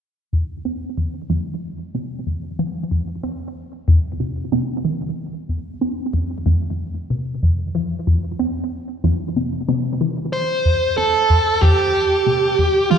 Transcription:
0.33 0.53 F2 medium
0.65 0.96 C4 medium
0.98 1.10 F2 medium
1.30 1.42 F2 medium
1.95 2.15 C3 medium
2.27 2.47 F2 medium
2.59 2.79 F3 medium
2.91 3.12 F2 medium
3.23 3.54 C4 medium
3.88 4.00 F2 medium
4.20 4.51 C3 medium
4.52 4.73 C3 loud
4.85 5.05 E3 medium
5.49 5.70 F2 medium
5.81 6.12 C4 medium
6.13 6.26 F2 medium
6.46 6.58 F2 medium
7.10 7.31 C3 medium
7.43 7.63 F2 medium
7.75 7.95 F3 medium
8.07 8.28 F2 medium
8.39 8.70 C4 medium
9.04 9.16 F2 medium
9.36 9.67 C3 medium
9.69 9.89 C3 loud
10.01 10.21 E3 medium
10.33 10.97 C5 loud
10.65 10.86 F2 medium
10.97 11.28 C4 medium
10.97 11.64 A4 medium
11.30 11.42 F2 medium
11.61 11.74 F2 loud
11.61 12.90 G4 medium
12.27 12.47 C3 medium
12.59 12.79 F2 medium
12.91 12.98 F3 medium
12.91 12.98 F4 medium

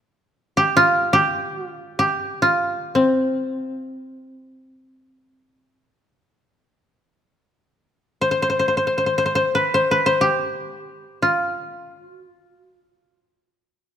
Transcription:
0.57 1.13 G4 medium
0.77 1.67 F4 loud
1.13 1.56 G4 loud
1.56 1.67 F#4 loud
1.67 1.99 F4 loud
1.99 4.03 G4 medium
2.42 4.61 F4 medium
2.95 5.76 C4 medium
8.21 8.31 C5 medium
8.31 8.42 C5 medium
8.42 8.49 C5 medium
8.50 8.59 C5 soft
8.59 8.68 C5 medium
8.68 8.77 C5 soft
8.77 8.87 C5 medium
8.87 8.97 C5 medium
8.98 9.06 C5 medium
9.06 9.18 C5 soft
9.18 9.25 C5 medium
9.26 9.35 C5 medium
9.35 9.61 C5 medium
9.55 9.80 B4 medium
9.74 9.97 C5 medium
9.91 10.12 B4 medium
10.06 11.78 C5 medium
10.21 12.25 G4 medium
11.22 12.06 F4 medium
12.06 12.29 F#4 medium
12.29 12.54 F4 medium
12.54 12.77 F#4 medium
12.77 13.61 F4 medium

